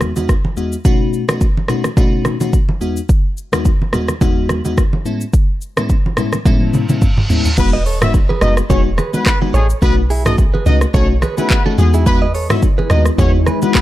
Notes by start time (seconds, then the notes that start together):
Already playing: E2 G#3 B3 D#4 F#4
0.01 cross-stick, high conga, shaker
0.16 E2 G#3 B3 D#4 F#4, high conga, shaker
0.29 kick, cross-stick, shaker
0.45 high conga
0.57 E2 G#3 B3 D#4 F#4, shaker
0.72 shaker
0.85 B2 A3 C#4 D#4 F#4, kick, shaker
1.13 shaker
1.28 B2 A3 C#4 D#4 F#4, cross-stick, high conga, shaker
1.41 kick, shaker
1.57 high conga
1.68 B2 A3 C#4 D#4 F#4, cross-stick, low conga, shaker
1.84 cross-stick, high conga, shaker
1.97 B2 A3 C#4 D#4 F#4, kick, low conga, shaker
2.25 cross-stick, high conga, shaker
2.40 B2 A3 C#4 D#4 F#4, high conga, shaker
2.53 kick, shaker
2.69 high conga
2.81 E2 G#3 B3 D#4 F#4, shaker
2.97 shaker
3.09 kick, shaker
3.37 shaker
3.52 E2 G#3 B3 D#4 F#4, cross-stick, high conga, shaker
3.65 kick, shaker
3.82 high conga
3.93 E2 G#3 B3 D#4 F#4, cross-stick, low conga, shaker
4.08 cross-stick, high conga, shaker
4.21 E2 G#3 B3 D#4 F#4, kick, low conga, shaker
4.49 cross-stick, high conga, shaker
4.65 E2 G#3 B3 D#4 F#4, high conga, shaker
4.78 kick, cross-stick, shaker
4.93 high conga
5.05 A2 G#3 B3 C#4 E4, shaker
5.21 shaker
5.33 kick, shaker
5.61 shaker
5.77 A2 G#3 B3 C#4 E4, cross-stick, high conga, shaker
5.89 kick, shaker
6.06 high conga
6.17 A2 G#3 B3 C#4 E4, cross-stick, low conga, shaker
6.33 cross-stick, high conga, shaker
6.45 A2 G#3 B3 C#4 E4, kick, high tom, reverse cymbal, low conga, shaker
6.61 high tom
6.74 mid tom, high conga, shaker
6.89 A2 G#3 B3 C#4 E4, mid tom, high conga, shaker
7.02 kick, mid tom, shaker
7.17 mid tom, high conga
7.29 A2 G#3 B3 C#4 E4, floor tom, shaker
7.45 floor tom, shaker
7.57 E1 G#3 B3 D#4 F#4 B4, kick, crash, shaker
7.73 B4 D#5
7.86 A4 C#5, open hi-hat, shaker
8.01 G#3 B3 D#4 E4 F#4 E5, cross-stick, mid tom, high conga, shaker
8.14 kick, shaker
8.29 G#4 B4, high conga
8.41 F#1 G#3 B3 D#4 F#4 B4 D#5, cross-stick, low conga, shaker
8.57 cross-stick, shaker
8.70 E1 G#3 B3 C#4 D#4 F#4 G#4 C#5, kick, low conga, shaker
8.98 G#4 B4, cross-stick, high conga, shaker
9.13 G#3 B3 D#4 F#4 B4, high conga, shaker
9.26 B3 B4, kick, cross-stick, clap, shaker
9.41 G#3 B3 D#4 F#4, high conga
9.54 A1 G#3 G#4 A4 C#5, shaker
9.70 shaker
9.82 B1 A3 B3 C#4 D#4 F#4 B4, kick, shaker
10.10 E4 G#4, open hi-hat, shaker
10.25 A3 C#4 D#4 F#4 A4 D#5, cross-stick, mid tom, high conga, shaker
10.38 kick, shaker
10.54 G#4 B4, high conga
10.66 C#2 A3 C#4 D#4 F#4 B4 D#5, low conga, shaker
10.81 cross-stick, shaker
10.94 B1 A3 C#4 D#4 F#4 A4 C#5, kick, low conga, shaker
11.22 G#4 B4, cross-stick, high conga, shaker
11.37 A3 B3 C#4 D#4 E4 F#4 G#4 B4, high conga, shaker
11.50 B3 B4, kick, clap, shaker
11.65 A3 C#4 D#4 F#4 A4, high conga
11.78 E2 G#3 B3 D#4 F#4 G#4, shaker
11.94 E4 G#4, shaker
12.06 E3 G#3 B3 D#4 E4 F#4 B4, kick, riser, shaker
12.22 B4 D#5
12.35 A4 C#5, open hi-hat, shaker
12.49 G#3 B3 D#4 E4 F#4 E5, cross-stick, mid tom, high conga, shaker
12.62 kick, shaker
12.78 G#4 B4, high conga
12.90 D#2 G#3 B3 D#4 F#4 B4 D#5, cross-stick, low conga, shaker
13.06 cross-stick, shaker
13.18 E2 G#3 B3 C#4 D#4 F#4 G#4 C#5, kick, low conga, shaker
13.46 G#4 B4, cross-stick, high conga, shaker
13.62 G#3 B3 D#4 F#4 B4, high conga, shaker
13.75 B3 B4, kick, cross-stick, clap, shaker